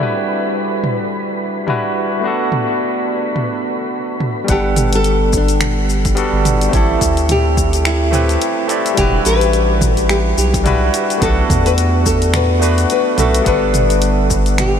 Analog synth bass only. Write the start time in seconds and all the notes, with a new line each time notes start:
4.49 G1
6.33 G1
6.73 A1
7.01 D2
8.98 E1
9.26 A1
10.38 B1
11.22 B1
11.50 E2
13.18 B1
13.46 G1